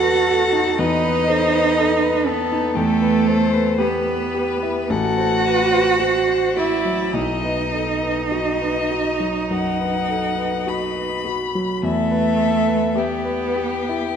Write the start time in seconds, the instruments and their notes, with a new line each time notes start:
Already playing: grand piano E2 A4, cello F#4, violin A4 F#5
0.00 grand piano B4
0.27 grand piano A4
0.53 grand piano D#4
0.78 grand piano E2, cello D#4, violin B4 D#5
1.04 grand piano B4
1.27 grand piano A4, violin C5
1.53 grand piano B4
1.77 grand piano A4, violin B4
2.02 grand piano B4
2.26 cello B3, grand piano A4, violin A4 B4
2.52 grand piano D#4
2.76 grand piano E2, cello A3, violin G4 A4
3.02 grand piano B4
3.27 grand piano A4, violin C5
3.53 grand piano B4
3.78 cello B3, grand piano G4, violin B4
4.07 grand piano B4
4.35 grand piano G4
4.63 grand piano E4
4.90 grand piano A1, cello F#4, violin A4 F#5
5.18 grand piano C5
5.45 grand piano B4, violin B4
5.71 grand piano C5
5.99 grand piano F#4, violin C5
6.28 grand piano C5
6.57 cello E4, grand piano F#4, violin D5 E5
6.85 grand piano F#3
7.13 grand piano B1, cello D#4, violin D#5
7.43 grand piano B4
7.73 grand piano A4
8.02 grand piano B4
8.32 grand piano F#4, violin D#5
8.61 grand piano B4
8.90 grand piano F#4
9.20 grand piano F#3
9.50 grand piano F#2, violin F#5
9.79 grand piano B4
10.09 grand piano A4
10.39 grand piano B4
10.67 grand piano F#4, violin B5
10.96 grand piano B4
11.25 grand piano F#4
11.55 grand piano F#3
11.83 grand piano E2, cello A3, violin A4 E5
12.11 grand piano B4
12.39 grand piano A4
12.68 grand piano B4
12.96 cello B3, grand piano G4, violin G4 B4
13.25 grand piano B4
13.56 grand piano G4
13.89 grand piano E4